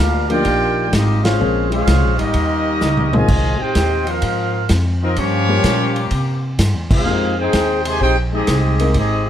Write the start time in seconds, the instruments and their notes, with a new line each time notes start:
Already playing: trombone section A#3 D4 F4, trumpet section D4 G4 A#4 F5
0.00 upright bass D2
0.29 upright piano F3 A#3 D4 D#4 G4, trombone section A#3 D4 G4, trumpet section F4 A#4 D5 G5, ride
0.45 upright bass A#1, kick, ride
0.91 upright bass G#1, trombone section G3 A#3 D#4, trumpet section A#3 F4 G4 D#5, kick, snare, hi-hat pedal, ride
1.22 trombone section G#3 C#4 F4, trumpet section C#4 G#4 C5 F5, snare, ride
1.40 upright bass A#1, upright piano F3 A#3 C4 C#4 G#4
1.69 trombone section G#3 C#4 F4, trumpet section C#4 G#4 C5 F5, ride
1.87 upright bass C2, kick, snare, hi-hat pedal, ride
2.03 upright bass A#1
2.16 upright bass G#1, trombone section G3 A#3 D#4, trumpet section C#4 G4 A#4 D#5, ride
2.34 upright bass D#2, kick, ride
2.81 upright bass C#2, snare, hi-hat pedal
2.97 mid tom
3.11 trombone section D#3 F3 G#3, upright piano G#3 A#3 C4 D#4, trumpet section F4 C5 D#5 G#5, mid tom
3.15 upright piano F4
3.28 upright bass C2, kick, crash
3.59 trombone section C4 D#4 G4, trumpet section F4 C5 D#5 G5, muted upright bass stroke
3.75 upright bass D#2, kick, snare, hi-hat pedal, ride
4.06 trombone section F3 C4 F4, trumpet section D#4 A#4 C5 F5, ride
4.22 upright bass G#2, kick, ride
4.69 upright bass F2, kick, snare, hi-hat pedal, ride
5.02 trombone section F3 C4 D#4, trumpet section C4 F4 A#4 D#5
5.16 upright bass G2, trombone section F3 A#3 C#4, trumpet section A#3 F4 G4 C#5, kick, ride
5.48 upright piano G3 A#3 C#4 F4 G4
5.64 upright bass A#2, kick, snare, hi-hat pedal, ride
5.96 ride
6.11 upright bass C3, kick, ride
6.59 upright bass G2, kick, snare, hi-hat pedal, ride
6.74 upright bass E2
6.89 upright bass C2, trombone section G#3 C4 F4, trumpet section D#4 G#4 C5 F5, kick, crash
7.05 upright bass F2, upright piano G#3 A#3 C4 D#4 G4
7.38 trombone section C4 D#4 G#4, trumpet section D#4 G#4 C5 G5
7.53 upright bass D#2, kick, snare, hi-hat pedal, ride
7.85 trombone section C3 D#3 G#3, trumpet section D#4 G4 C5 G#5, ride
8.01 upright bass A#1, trombone section C4 D#4 G4, trumpet section D#4 G#4 C5 G5, kick
8.32 trombone section G#3 C4 D#4, trumpet section C4 G4 G#4 D#5
8.47 upright bass C2, kick, snare, hi-hat pedal, ride
8.79 upright piano G#3 A#3 C4 D#4 A#4, ride
8.94 upright bass G#1, trombone section G#3 C4 D#4, trumpet section C4 G4 G#4 D#5, kick, ride